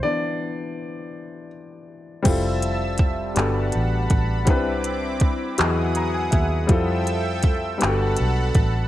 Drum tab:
CC |------|x-----|------|------|
HH |------|xxxxxx|xxxxxx|xxxxxx|
CP |------|---x--|---x--|---x--|
BD |------|o-o--o|o-o--o|o-o--o|